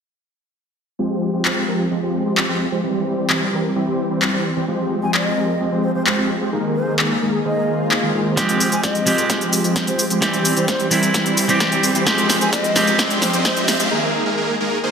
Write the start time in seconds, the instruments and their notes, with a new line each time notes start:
0.99 supersaw synth F3 G#3 C4 G4 C5, analog synth pad F3 G#3 C4 G4
1.34 supersaw synth F3 G#3 C4 G4 C5
1.45 supersaw synth F3 G#3 C4 G4 C5, clap
1.68 supersaw synth F3 G#3 C4 G4 A#4
1.91 supersaw synth F3 G#3 C4 G4 D#5
2.03 supersaw synth F3 G#3 C4 G4 C5
2.26 supersaw synth F3 G#3 C4 G4 C5
2.37 clap
2.49 supersaw synth F3 G#3 C4 G4 C5
2.72 supersaw synth F3 G#3 C4 G4 C5
2.83 analog synth pad E3 G3, supersaw synth E3 G3 C4 G4 C5
3.18 supersaw synth E3 G3 C4 G4 C5
3.30 supersaw synth E3 G3 C4 G4 C5, clap
3.53 supersaw synth E3 G3 C4 G4 A#4
3.76 supersaw synth E3 G3 C4 G4 E5
3.87 supersaw synth E3 G3 C4 G4 C5
4.10 supersaw synth E3 G3 C4 G4 C5
4.22 clap
4.33 supersaw synth E3 G3 C4 G4 C5
4.57 supersaw synth E3 G3 C4 G4 C5
4.68 supersaw synth F3 G#3 C4 G4 C5, analog synth pad F3 G#3 C4
5.03 supersaw synth F3 G#3 C4 G4 C5, flute G#5
5.14 supersaw synth F3 G#3 C4 G4 C5, flute D#5, clap
5.37 supersaw synth F3 G#3 C4 G4 A#4
5.60 supersaw synth F3 G#3 C4 G4 D#5
5.72 supersaw synth F3 G#3 C4 G4 C5
5.83 flute C5
5.95 supersaw synth F3 G#3 C4 G4 C5, flute C5
6.07 flute C5, clap
6.18 supersaw synth F3 G#3 C4 G4 C5
6.41 supersaw synth F3 G#3 C4 G4 C5
6.53 supersaw synth D#3 G#3 A#3 G#4 A#4, analog synth pad D#3 A#3 G#4
6.76 flute C5
6.87 supersaw synth D#3 G#3 A#3 G#4 A#4
6.99 supersaw synth D#3 G#3 A#3 G#4 A#4, clap
7.22 supersaw synth D#3 G#3 A#3 G#4 A#4
7.45 supersaw synth D#3 G#3 A#3 G#4 C5, flute D#5, swell
7.57 supersaw synth D#3 G#3 A#3 G#4 A#4
7.68 supersaw synth D#3 G#3 A#3 G#4 C5
7.91 clap
8.03 supersaw synth D#3 G#3 A#3 G#4 C5
8.14 supersaw synth D#3 G#3 A#3 G#4 C5
8.36 clean electric guitar F3 G#3 C4 G4, analog synth pad F3 G#3 C4 G4, supersaw synth F3 G#3 C4 G4 C5, kick, snare, closed hi-hat, riser, shaker
8.49 closed hi-hat, shaker
8.60 open hi-hat, shaker
8.72 supersaw synth F3 G#3 C4 G4 C5, flute G#5, closed hi-hat, shaker
8.83 supersaw synth F3 G#3 C4 G4 C5, flute D#5, kick, snare, closed hi-hat, shaker
8.95 closed hi-hat, shaker
9.05 clean electric guitar F3 G#3 C4 G4, supersaw synth F3 G#3 C4 G4 A#4, open hi-hat, shaker
9.18 closed hi-hat, shaker
9.30 supersaw synth F3 G#3 C4 G4 D#5, kick, snare, closed hi-hat, shaker
9.41 supersaw synth F3 G#3 C4 G4 C5, closed hi-hat, shaker
9.53 open hi-hat, shaker
9.64 supersaw synth F3 G#3 C4 G4 C5, closed hi-hat, shaker
9.76 kick, snare, closed hi-hat, shaker
9.87 supersaw synth F3 G#3 C4 G4 C5, flute C5, closed hi-hat, shaker
9.99 open hi-hat, shaker
10.10 supersaw synth F3 G#3 C4 G4 C5, closed hi-hat, shaker
10.21 clean electric guitar E3 G3 C4 G4, supersaw synth E3 G3 C4 G4 C5, analog synth pad E3 G3 G4, kick, snare, closed hi-hat, shaker
10.34 closed hi-hat, shaker
10.45 open hi-hat, shaker
10.57 supersaw synth E3 G3 C4 G4 C5, flute C5, closed hi-hat, shaker
10.68 supersaw synth E3 G3 C4 G4 C5, flute C5, kick, snare, closed hi-hat, shaker
10.80 closed hi-hat, shaker
10.90 clean electric guitar E3 G3 C4 E4, supersaw synth E3 G3 C4 G4 A#4, open hi-hat, shaker
11.03 closed hi-hat, shaker
11.14 supersaw synth E3 G3 C4 G4 E5, kick, snare, closed hi-hat, shaker
11.26 supersaw synth E3 G3 C4 G4 C5, closed hi-hat, shaker
11.37 open hi-hat, shaker
11.48 clean electric guitar E3 G3 C4 G4, supersaw synth E3 G3 C4 G4 C5, closed hi-hat, shaker
11.60 kick, snare, closed hi-hat, shaker
11.72 supersaw synth E3 G3 C4 G4 C5, closed hi-hat, shaker
11.83 open hi-hat, shaker
11.95 supersaw synth E3 G3 C4 G4 C5, closed hi-hat, shaker
12.05 clean electric guitar F3 G#3 C4 G4, supersaw synth F3 G#3 C4 G4 C5, analog synth pad F3 G#3 G4, kick, snare, closed hi-hat, shaker
12.18 closed hi-hat, shaker
12.30 snare, open hi-hat, shaker
12.41 supersaw synth F3 G#3 C4 G4 C5, flute G#5, closed hi-hat, shaker
12.53 supersaw synth F3 G#3 C4 G4 C5, flute D#5, kick, snare, closed hi-hat, shaker
12.64 closed hi-hat, shaker
12.75 clean electric guitar F3 G#3 C4 G4, supersaw synth F3 G#3 C4 G4 A#4, snare, open hi-hat, shaker
12.87 closed hi-hat, shaker
12.99 supersaw synth F3 G#3 C4 G4 D#5, kick, snare, closed hi-hat, shaker
13.10 supersaw synth F3 G#3 C4 G4 C5, closed hi-hat, shaker
13.22 flute C5, snare, open hi-hat, shaker
13.33 supersaw synth F3 G#3 C4 G4 C5, flute C5, closed hi-hat, shaker
13.45 flute C5, kick, snare, closed hi-hat, shaker
13.57 supersaw synth F3 G#3 C4 G4 C5, closed hi-hat, shaker
13.68 snare, open hi-hat, shaker
13.80 supersaw synth F3 G#3 C4 G4 C5, closed hi-hat, shaker
13.91 supersaw synth D#3 G#3 A#3 G#4 A#4
14.26 supersaw synth D#3 G#3 A#3 G#4 A#4
14.37 supersaw synth D#3 G#3 A#3 G#4 A#4
14.60 supersaw synth D#3 G#3 A#3 G#4 A#4
14.84 supersaw synth D#3 G#3 A#3 G#4 C5